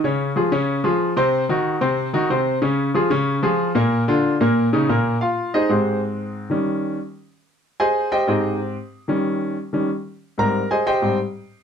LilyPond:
<<
  \new Staff \with { instrumentName = "Grand piano" } { \time 4/4 \key des \lydian \tempo 4 = 186 <des des' des''>4 <f f' aes'>8 <des des' des''>4 <f f' aes'>4 <c c' c''>8~ | <c c' c''>8 <ees ees' ges'>4 <c c' c''>4 <ees ees' ges'>8 <c c' c''>4 | <des des' des''>4 <f f' aes'>8 <des des' des''>4 <f f' aes'>4 <bes, bes bes'>8~ | <bes, bes bes'>8 <d d' f'>4 <bes, bes bes'>4 <des des' ees'>8 <bes, bes bes'>4 |
\key aes \major <f' f''>4 <ees' aes' c'' ees''>8 <c' g' aes' c''>4 r4. | r1 | <aes' c'' ees'' aes''>4 <g' c'' ees'' g''>8 <ees' aes' c'' ees''>4 r4. | r1 |
<bes' bes''>4 <aes' c'' ees'' aes''>8 <g' c'' ees'' g''>4 r4. | }
  \new Staff \with { instrumentName = "Grand piano" } { \clef bass \time 4/4 \key des \lydian r1 | r1 | r1 | r1 |
\key aes \major r4. <aes, aes>2~ <aes, aes>8 | <ees g des'>4. r2 r8 | r4. <aes, c' g'>4. r4 | <ees g des'>4. r8 <ees g des'>8 r4. |
<aes, g c'>8 r4. <aes, g c'>8 r4. | }
>>